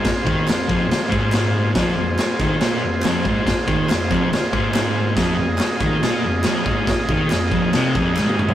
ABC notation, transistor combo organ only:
X:1
M:4/4
L:1/8
Q:1/4=141
K:Fm
V:1 name="Transistor combo organ"
[FAc]8 | [FAc]8- | [FAc]8 | [FAe]8- |
[FAe]8 |]